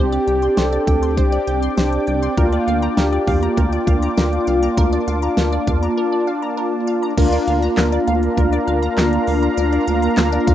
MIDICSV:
0, 0, Header, 1, 7, 480
1, 0, Start_track
1, 0, Tempo, 600000
1, 1900, Time_signature, 4, 2, 24, 8
1, 8437, End_track
2, 0, Start_track
2, 0, Title_t, "Synth arpeggio sound"
2, 0, Program_c, 0, 84
2, 99, Note_on_c, 0, 74, 73
2, 175, Note_off_c, 0, 74, 0
2, 220, Note_on_c, 0, 79, 81
2, 296, Note_off_c, 0, 79, 0
2, 340, Note_on_c, 0, 84, 80
2, 416, Note_off_c, 0, 84, 0
2, 459, Note_on_c, 0, 72, 83
2, 535, Note_off_c, 0, 72, 0
2, 580, Note_on_c, 0, 74, 74
2, 656, Note_off_c, 0, 74, 0
2, 700, Note_on_c, 0, 79, 80
2, 776, Note_off_c, 0, 79, 0
2, 820, Note_on_c, 0, 84, 77
2, 896, Note_off_c, 0, 84, 0
2, 940, Note_on_c, 0, 72, 90
2, 1016, Note_off_c, 0, 72, 0
2, 1059, Note_on_c, 0, 74, 71
2, 1135, Note_off_c, 0, 74, 0
2, 1179, Note_on_c, 0, 79, 80
2, 1255, Note_off_c, 0, 79, 0
2, 1300, Note_on_c, 0, 84, 77
2, 1376, Note_off_c, 0, 84, 0
2, 1420, Note_on_c, 0, 72, 85
2, 1496, Note_off_c, 0, 72, 0
2, 1660, Note_on_c, 0, 79, 80
2, 1736, Note_off_c, 0, 79, 0
2, 1780, Note_on_c, 0, 84, 80
2, 1856, Note_off_c, 0, 84, 0
2, 1900, Note_on_c, 0, 70, 95
2, 1976, Note_off_c, 0, 70, 0
2, 2020, Note_on_c, 0, 74, 75
2, 2096, Note_off_c, 0, 74, 0
2, 2140, Note_on_c, 0, 77, 85
2, 2216, Note_off_c, 0, 77, 0
2, 2260, Note_on_c, 0, 82, 80
2, 2336, Note_off_c, 0, 82, 0
2, 2381, Note_on_c, 0, 70, 82
2, 2456, Note_off_c, 0, 70, 0
2, 2501, Note_on_c, 0, 74, 74
2, 2576, Note_off_c, 0, 74, 0
2, 2621, Note_on_c, 0, 77, 80
2, 2697, Note_off_c, 0, 77, 0
2, 2741, Note_on_c, 0, 82, 81
2, 2817, Note_off_c, 0, 82, 0
2, 2860, Note_on_c, 0, 70, 89
2, 2936, Note_off_c, 0, 70, 0
2, 2981, Note_on_c, 0, 74, 74
2, 3056, Note_off_c, 0, 74, 0
2, 3101, Note_on_c, 0, 77, 81
2, 3177, Note_off_c, 0, 77, 0
2, 3221, Note_on_c, 0, 82, 80
2, 3296, Note_off_c, 0, 82, 0
2, 3340, Note_on_c, 0, 70, 84
2, 3416, Note_off_c, 0, 70, 0
2, 3581, Note_on_c, 0, 77, 82
2, 3656, Note_off_c, 0, 77, 0
2, 3700, Note_on_c, 0, 82, 79
2, 3776, Note_off_c, 0, 82, 0
2, 3821, Note_on_c, 0, 70, 98
2, 3897, Note_off_c, 0, 70, 0
2, 3940, Note_on_c, 0, 74, 77
2, 4016, Note_off_c, 0, 74, 0
2, 4061, Note_on_c, 0, 77, 85
2, 4137, Note_off_c, 0, 77, 0
2, 4181, Note_on_c, 0, 82, 80
2, 4256, Note_off_c, 0, 82, 0
2, 4301, Note_on_c, 0, 70, 85
2, 4376, Note_off_c, 0, 70, 0
2, 4420, Note_on_c, 0, 74, 75
2, 4496, Note_off_c, 0, 74, 0
2, 4540, Note_on_c, 0, 77, 82
2, 4616, Note_off_c, 0, 77, 0
2, 4660, Note_on_c, 0, 82, 79
2, 4736, Note_off_c, 0, 82, 0
2, 4779, Note_on_c, 0, 70, 87
2, 4855, Note_off_c, 0, 70, 0
2, 4899, Note_on_c, 0, 74, 73
2, 4975, Note_off_c, 0, 74, 0
2, 5019, Note_on_c, 0, 77, 81
2, 5095, Note_off_c, 0, 77, 0
2, 5139, Note_on_c, 0, 82, 80
2, 5215, Note_off_c, 0, 82, 0
2, 5259, Note_on_c, 0, 70, 82
2, 5335, Note_off_c, 0, 70, 0
2, 5499, Note_on_c, 0, 77, 81
2, 5575, Note_off_c, 0, 77, 0
2, 5620, Note_on_c, 0, 82, 80
2, 5696, Note_off_c, 0, 82, 0
2, 5740, Note_on_c, 0, 70, 99
2, 5816, Note_off_c, 0, 70, 0
2, 5860, Note_on_c, 0, 74, 77
2, 5936, Note_off_c, 0, 74, 0
2, 5980, Note_on_c, 0, 77, 83
2, 6056, Note_off_c, 0, 77, 0
2, 6100, Note_on_c, 0, 82, 82
2, 6176, Note_off_c, 0, 82, 0
2, 6219, Note_on_c, 0, 70, 83
2, 6295, Note_off_c, 0, 70, 0
2, 6339, Note_on_c, 0, 74, 77
2, 6415, Note_off_c, 0, 74, 0
2, 6459, Note_on_c, 0, 77, 84
2, 6535, Note_off_c, 0, 77, 0
2, 6699, Note_on_c, 0, 70, 90
2, 6775, Note_off_c, 0, 70, 0
2, 6820, Note_on_c, 0, 74, 75
2, 6896, Note_off_c, 0, 74, 0
2, 6939, Note_on_c, 0, 77, 79
2, 7015, Note_off_c, 0, 77, 0
2, 7059, Note_on_c, 0, 82, 78
2, 7135, Note_off_c, 0, 82, 0
2, 7179, Note_on_c, 0, 70, 83
2, 7255, Note_off_c, 0, 70, 0
2, 7419, Note_on_c, 0, 77, 83
2, 7495, Note_off_c, 0, 77, 0
2, 7540, Note_on_c, 0, 82, 78
2, 7616, Note_off_c, 0, 82, 0
2, 7660, Note_on_c, 0, 70, 100
2, 7736, Note_off_c, 0, 70, 0
2, 7780, Note_on_c, 0, 74, 74
2, 7856, Note_off_c, 0, 74, 0
2, 7900, Note_on_c, 0, 77, 83
2, 7976, Note_off_c, 0, 77, 0
2, 8020, Note_on_c, 0, 82, 83
2, 8096, Note_off_c, 0, 82, 0
2, 8140, Note_on_c, 0, 70, 85
2, 8216, Note_off_c, 0, 70, 0
2, 8260, Note_on_c, 0, 74, 75
2, 8336, Note_off_c, 0, 74, 0
2, 8380, Note_on_c, 0, 77, 82
2, 8437, Note_off_c, 0, 77, 0
2, 8437, End_track
3, 0, Start_track
3, 0, Title_t, "Analog synth pad"
3, 0, Program_c, 1, 89
3, 0, Note_on_c, 1, 67, 84
3, 0, Note_on_c, 1, 74, 77
3, 0, Note_on_c, 1, 79, 77
3, 0, Note_on_c, 1, 86, 94
3, 1868, Note_off_c, 1, 67, 0
3, 1901, Note_on_c, 1, 65, 85
3, 3789, Note_off_c, 1, 79, 0
3, 3819, Note_on_c, 1, 81, 75
3, 5708, Note_off_c, 1, 86, 0
3, 5709, Note_off_c, 1, 65, 0
3, 5709, Note_off_c, 1, 74, 0
3, 5720, Note_off_c, 1, 81, 0
3, 5738, Note_on_c, 1, 62, 80
3, 5738, Note_on_c, 1, 70, 79
3, 5738, Note_on_c, 1, 77, 77
3, 5739, Note_on_c, 1, 82, 93
3, 8437, Note_off_c, 1, 62, 0
3, 8437, Note_off_c, 1, 70, 0
3, 8437, Note_off_c, 1, 77, 0
3, 8437, Note_off_c, 1, 82, 0
3, 8437, End_track
4, 0, Start_track
4, 0, Title_t, "French horn"
4, 0, Program_c, 2, 60
4, 0, Note_on_c, 2, 67, 112
4, 465, Note_on_c, 2, 69, 106
4, 477, Note_off_c, 2, 67, 0
4, 940, Note_off_c, 2, 69, 0
4, 945, Note_on_c, 2, 67, 104
4, 1391, Note_off_c, 2, 67, 0
4, 1425, Note_on_c, 2, 62, 93
4, 1871, Note_off_c, 2, 62, 0
4, 1904, Note_on_c, 2, 65, 105
4, 2350, Note_off_c, 2, 65, 0
4, 2385, Note_on_c, 2, 67, 100
4, 2864, Note_on_c, 2, 65, 96
4, 2876, Note_off_c, 2, 67, 0
4, 5262, Note_off_c, 2, 65, 0
4, 8437, End_track
5, 0, Start_track
5, 0, Title_t, "Analog polysynth"
5, 0, Program_c, 3, 90
5, 0, Note_on_c, 3, 60, 67
5, 0, Note_on_c, 3, 62, 63
5, 0, Note_on_c, 3, 67, 76
5, 1868, Note_off_c, 3, 60, 0
5, 1868, Note_off_c, 3, 62, 0
5, 1868, Note_off_c, 3, 67, 0
5, 1900, Note_on_c, 3, 58, 68
5, 1900, Note_on_c, 3, 65, 75
5, 1901, Note_on_c, 3, 62, 63
5, 5708, Note_off_c, 3, 58, 0
5, 5708, Note_off_c, 3, 62, 0
5, 5708, Note_off_c, 3, 65, 0
5, 5739, Note_on_c, 3, 58, 82
5, 5740, Note_on_c, 3, 62, 76
5, 5740, Note_on_c, 3, 65, 90
5, 8437, Note_off_c, 3, 58, 0
5, 8437, Note_off_c, 3, 62, 0
5, 8437, Note_off_c, 3, 65, 0
5, 8437, End_track
6, 0, Start_track
6, 0, Title_t, "Analog synth bass"
6, 0, Program_c, 4, 38
6, 0, Note_on_c, 4, 36, 107
6, 148, Note_off_c, 4, 36, 0
6, 219, Note_on_c, 4, 36, 105
6, 387, Note_off_c, 4, 36, 0
6, 459, Note_on_c, 4, 36, 105
6, 628, Note_off_c, 4, 36, 0
6, 700, Note_on_c, 4, 38, 93
6, 939, Note_on_c, 4, 36, 108
6, 951, Note_off_c, 4, 38, 0
6, 1107, Note_off_c, 4, 36, 0
6, 1180, Note_on_c, 4, 36, 91
6, 1348, Note_off_c, 4, 36, 0
6, 1420, Note_on_c, 4, 36, 110
6, 1588, Note_off_c, 4, 36, 0
6, 1661, Note_on_c, 4, 36, 91
6, 1829, Note_off_c, 4, 36, 0
6, 1900, Note_on_c, 4, 38, 113
6, 2068, Note_off_c, 4, 38, 0
6, 2140, Note_on_c, 4, 38, 97
6, 2308, Note_off_c, 4, 38, 0
6, 2380, Note_on_c, 4, 38, 105
6, 2548, Note_off_c, 4, 38, 0
6, 2620, Note_on_c, 4, 40, 94
6, 2788, Note_off_c, 4, 40, 0
6, 2860, Note_on_c, 4, 38, 103
6, 3028, Note_off_c, 4, 38, 0
6, 3098, Note_on_c, 4, 38, 94
6, 3267, Note_off_c, 4, 38, 0
6, 3340, Note_on_c, 4, 38, 109
6, 3508, Note_off_c, 4, 38, 0
6, 3580, Note_on_c, 4, 36, 87
6, 3748, Note_off_c, 4, 36, 0
6, 3820, Note_on_c, 4, 38, 113
6, 3988, Note_off_c, 4, 38, 0
6, 4060, Note_on_c, 4, 38, 105
6, 4228, Note_off_c, 4, 38, 0
6, 4300, Note_on_c, 4, 38, 100
6, 4468, Note_off_c, 4, 38, 0
6, 4539, Note_on_c, 4, 40, 92
6, 4708, Note_off_c, 4, 40, 0
6, 5740, Note_on_c, 4, 38, 109
6, 5908, Note_off_c, 4, 38, 0
6, 5980, Note_on_c, 4, 38, 100
6, 6148, Note_off_c, 4, 38, 0
6, 6220, Note_on_c, 4, 38, 97
6, 6388, Note_off_c, 4, 38, 0
6, 6460, Note_on_c, 4, 38, 109
6, 6628, Note_off_c, 4, 38, 0
6, 6699, Note_on_c, 4, 38, 101
6, 6868, Note_off_c, 4, 38, 0
6, 6940, Note_on_c, 4, 38, 88
6, 7108, Note_off_c, 4, 38, 0
6, 7180, Note_on_c, 4, 38, 99
6, 7348, Note_off_c, 4, 38, 0
6, 7420, Note_on_c, 4, 38, 96
6, 7588, Note_off_c, 4, 38, 0
6, 7660, Note_on_c, 4, 38, 103
6, 7828, Note_off_c, 4, 38, 0
6, 7900, Note_on_c, 4, 38, 99
6, 8068, Note_off_c, 4, 38, 0
6, 8141, Note_on_c, 4, 38, 104
6, 8309, Note_off_c, 4, 38, 0
6, 8380, Note_on_c, 4, 38, 112
6, 8437, Note_off_c, 4, 38, 0
6, 8437, End_track
7, 0, Start_track
7, 0, Title_t, "Drums"
7, 99, Note_on_c, 9, 42, 50
7, 179, Note_off_c, 9, 42, 0
7, 221, Note_on_c, 9, 42, 58
7, 301, Note_off_c, 9, 42, 0
7, 338, Note_on_c, 9, 42, 55
7, 418, Note_off_c, 9, 42, 0
7, 458, Note_on_c, 9, 38, 117
7, 459, Note_on_c, 9, 42, 71
7, 538, Note_off_c, 9, 38, 0
7, 539, Note_off_c, 9, 42, 0
7, 579, Note_on_c, 9, 42, 45
7, 659, Note_off_c, 9, 42, 0
7, 699, Note_on_c, 9, 36, 92
7, 699, Note_on_c, 9, 42, 77
7, 779, Note_off_c, 9, 36, 0
7, 779, Note_off_c, 9, 42, 0
7, 821, Note_on_c, 9, 42, 54
7, 901, Note_off_c, 9, 42, 0
7, 939, Note_on_c, 9, 36, 87
7, 942, Note_on_c, 9, 42, 68
7, 1019, Note_off_c, 9, 36, 0
7, 1022, Note_off_c, 9, 42, 0
7, 1059, Note_on_c, 9, 42, 51
7, 1139, Note_off_c, 9, 42, 0
7, 1179, Note_on_c, 9, 42, 77
7, 1259, Note_off_c, 9, 42, 0
7, 1300, Note_on_c, 9, 42, 61
7, 1380, Note_off_c, 9, 42, 0
7, 1419, Note_on_c, 9, 42, 63
7, 1421, Note_on_c, 9, 38, 118
7, 1499, Note_off_c, 9, 42, 0
7, 1501, Note_off_c, 9, 38, 0
7, 1541, Note_on_c, 9, 42, 46
7, 1621, Note_off_c, 9, 42, 0
7, 1658, Note_on_c, 9, 42, 66
7, 1738, Note_off_c, 9, 42, 0
7, 1780, Note_on_c, 9, 42, 54
7, 1860, Note_off_c, 9, 42, 0
7, 1900, Note_on_c, 9, 36, 105
7, 1900, Note_on_c, 9, 42, 69
7, 1980, Note_off_c, 9, 36, 0
7, 1980, Note_off_c, 9, 42, 0
7, 2020, Note_on_c, 9, 42, 50
7, 2100, Note_off_c, 9, 42, 0
7, 2142, Note_on_c, 9, 42, 59
7, 2222, Note_off_c, 9, 42, 0
7, 2259, Note_on_c, 9, 42, 57
7, 2339, Note_off_c, 9, 42, 0
7, 2379, Note_on_c, 9, 38, 117
7, 2380, Note_on_c, 9, 42, 73
7, 2459, Note_off_c, 9, 38, 0
7, 2460, Note_off_c, 9, 42, 0
7, 2500, Note_on_c, 9, 42, 44
7, 2580, Note_off_c, 9, 42, 0
7, 2620, Note_on_c, 9, 36, 89
7, 2620, Note_on_c, 9, 46, 56
7, 2700, Note_off_c, 9, 36, 0
7, 2700, Note_off_c, 9, 46, 0
7, 2741, Note_on_c, 9, 42, 56
7, 2821, Note_off_c, 9, 42, 0
7, 2860, Note_on_c, 9, 36, 88
7, 2861, Note_on_c, 9, 42, 68
7, 2940, Note_off_c, 9, 36, 0
7, 2941, Note_off_c, 9, 42, 0
7, 2980, Note_on_c, 9, 42, 53
7, 3060, Note_off_c, 9, 42, 0
7, 3098, Note_on_c, 9, 36, 105
7, 3099, Note_on_c, 9, 42, 75
7, 3178, Note_off_c, 9, 36, 0
7, 3179, Note_off_c, 9, 42, 0
7, 3220, Note_on_c, 9, 42, 60
7, 3300, Note_off_c, 9, 42, 0
7, 3339, Note_on_c, 9, 42, 61
7, 3341, Note_on_c, 9, 38, 119
7, 3419, Note_off_c, 9, 42, 0
7, 3421, Note_off_c, 9, 38, 0
7, 3461, Note_on_c, 9, 42, 48
7, 3541, Note_off_c, 9, 42, 0
7, 3578, Note_on_c, 9, 42, 67
7, 3658, Note_off_c, 9, 42, 0
7, 3701, Note_on_c, 9, 42, 52
7, 3781, Note_off_c, 9, 42, 0
7, 3819, Note_on_c, 9, 42, 72
7, 3820, Note_on_c, 9, 36, 105
7, 3899, Note_off_c, 9, 42, 0
7, 3900, Note_off_c, 9, 36, 0
7, 3941, Note_on_c, 9, 42, 50
7, 4021, Note_off_c, 9, 42, 0
7, 4062, Note_on_c, 9, 42, 58
7, 4142, Note_off_c, 9, 42, 0
7, 4179, Note_on_c, 9, 42, 58
7, 4259, Note_off_c, 9, 42, 0
7, 4298, Note_on_c, 9, 38, 120
7, 4299, Note_on_c, 9, 42, 74
7, 4378, Note_off_c, 9, 38, 0
7, 4379, Note_off_c, 9, 42, 0
7, 4419, Note_on_c, 9, 42, 45
7, 4499, Note_off_c, 9, 42, 0
7, 4539, Note_on_c, 9, 36, 89
7, 4539, Note_on_c, 9, 42, 77
7, 4619, Note_off_c, 9, 36, 0
7, 4619, Note_off_c, 9, 42, 0
7, 4661, Note_on_c, 9, 42, 54
7, 4741, Note_off_c, 9, 42, 0
7, 5740, Note_on_c, 9, 36, 107
7, 5740, Note_on_c, 9, 42, 70
7, 5740, Note_on_c, 9, 49, 94
7, 5820, Note_off_c, 9, 36, 0
7, 5820, Note_off_c, 9, 42, 0
7, 5820, Note_off_c, 9, 49, 0
7, 5861, Note_on_c, 9, 42, 51
7, 5941, Note_off_c, 9, 42, 0
7, 5982, Note_on_c, 9, 42, 60
7, 6062, Note_off_c, 9, 42, 0
7, 6100, Note_on_c, 9, 42, 57
7, 6180, Note_off_c, 9, 42, 0
7, 6219, Note_on_c, 9, 38, 121
7, 6219, Note_on_c, 9, 39, 99
7, 6219, Note_on_c, 9, 42, 74
7, 6299, Note_off_c, 9, 38, 0
7, 6299, Note_off_c, 9, 39, 0
7, 6299, Note_off_c, 9, 42, 0
7, 6340, Note_on_c, 9, 42, 45
7, 6420, Note_off_c, 9, 42, 0
7, 6461, Note_on_c, 9, 42, 75
7, 6541, Note_off_c, 9, 42, 0
7, 6582, Note_on_c, 9, 42, 55
7, 6662, Note_off_c, 9, 42, 0
7, 6700, Note_on_c, 9, 36, 89
7, 6703, Note_on_c, 9, 42, 71
7, 6780, Note_off_c, 9, 36, 0
7, 6783, Note_off_c, 9, 42, 0
7, 6821, Note_on_c, 9, 42, 52
7, 6901, Note_off_c, 9, 42, 0
7, 6941, Note_on_c, 9, 42, 79
7, 7021, Note_off_c, 9, 42, 0
7, 7061, Note_on_c, 9, 42, 61
7, 7141, Note_off_c, 9, 42, 0
7, 7180, Note_on_c, 9, 42, 63
7, 7182, Note_on_c, 9, 38, 121
7, 7182, Note_on_c, 9, 39, 104
7, 7260, Note_off_c, 9, 42, 0
7, 7262, Note_off_c, 9, 38, 0
7, 7262, Note_off_c, 9, 39, 0
7, 7303, Note_on_c, 9, 42, 48
7, 7383, Note_off_c, 9, 42, 0
7, 7419, Note_on_c, 9, 46, 70
7, 7499, Note_off_c, 9, 46, 0
7, 7541, Note_on_c, 9, 42, 53
7, 7621, Note_off_c, 9, 42, 0
7, 7659, Note_on_c, 9, 42, 73
7, 7739, Note_off_c, 9, 42, 0
7, 7780, Note_on_c, 9, 42, 51
7, 7860, Note_off_c, 9, 42, 0
7, 7902, Note_on_c, 9, 42, 59
7, 7982, Note_off_c, 9, 42, 0
7, 8019, Note_on_c, 9, 42, 58
7, 8099, Note_off_c, 9, 42, 0
7, 8138, Note_on_c, 9, 38, 125
7, 8138, Note_on_c, 9, 39, 102
7, 8139, Note_on_c, 9, 42, 74
7, 8218, Note_off_c, 9, 38, 0
7, 8218, Note_off_c, 9, 39, 0
7, 8219, Note_off_c, 9, 42, 0
7, 8259, Note_on_c, 9, 42, 44
7, 8339, Note_off_c, 9, 42, 0
7, 8379, Note_on_c, 9, 42, 79
7, 8380, Note_on_c, 9, 36, 96
7, 8437, Note_off_c, 9, 36, 0
7, 8437, Note_off_c, 9, 42, 0
7, 8437, End_track
0, 0, End_of_file